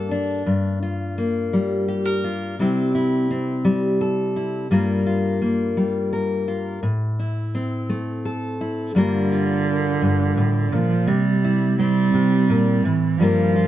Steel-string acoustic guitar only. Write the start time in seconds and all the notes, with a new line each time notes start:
Already playing: G2 G3 A#3 D4 A4
0.11 D4
0.46 G2
0.82 F4
1.18 A#3
1.53 G3
1.88 G4
2.05 A#4
2.24 F4
2.59 C3 G3 C4 E4 G4
2.95 E4
3.31 C4
3.65 G3
4.01 A4
4.36 E4
4.71 G2 G3 A#3 F4 A#4
5.07 F4
5.42 A#3
5.77 G3
6.13 A#4
6.48 F4
6.83 A2
7.20 E4
7.55 C4
7.89 A3
8.25 A4
8.61 E4
8.95 G2 G3 A#3 F4 A#4
9.32 F4
10.02 G2
10.37 A2
10.72 A#2
11.08 C3
11.45 E4
11.79 C4
12.14 C3
12.50 A#2
12.85 A2
13.20 G2 G3 A#3 F4 A#4
13.56 F4